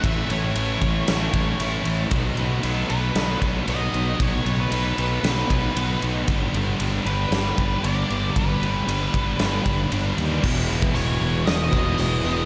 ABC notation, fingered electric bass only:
X:1
M:4/4
L:1/8
Q:1/4=115
K:Bmix
V:1 name="Fingered electric bass" clef=bass
A,,, A,,, A,,, A,,, A,,, A,,, A,,, A,,, | B,,, B,,, B,,, B,,, B,,, B,,, B,,, B,,, | B,,, B,,, B,,, B,,, B,,, B,,, B,,, B,,, | =G,,, G,,, G,,, G,,, G,,, G,,, G,,, G,,, |
=G,,, G,,, G,,, G,,, G,,, G,,, G,,, D,, | E,,,2 E,,, E,,, E,,, E,,, E,,, E,,, |]